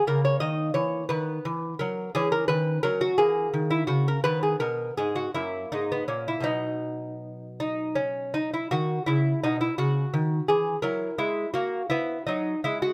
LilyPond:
<<
  \new Staff \with { instrumentName = "Lute" } { \time 6/8 \key b \major \tempo 4. = 56 ais'16 cis''16 dis''8 cis''8 b'4 ais'8 | gis'16 ais'16 b'8 ais'16 fis'16 gis'8. e'16 fis'16 ais'16 | b'16 gis'16 ais'8 gis'16 fis'16 e'8 dis'16 b16 cis'16 e'16 | dis'4. dis'8 cis'8 dis'16 e'16 |
fis'8 e'8 dis'16 e'16 fis'4 gis'8 | ais'8 e'8 fis'8 e'8 dis'8 e'16 fis'16 | }
  \new Staff \with { instrumentName = "Lute" } { \clef bass \time 6/8 \key b \major << { ais4. b4. | cis'4. ais4. | b4. ais4. | r2. |
r2. | e'4. r4. | } \\ { cis8 dis8 e8 dis8 e8 fis8 | e8 dis8 fis8 e8 dis8 cis8 | dis8 b,8 gis,8 fis,8 gis,8 ais,8 | <b, fis b>2. |
dis8 cis8 b,8 cis8 dis8 e8 | fis8 gis8 ais8 b8 fis8 gis8 | } >> }
>>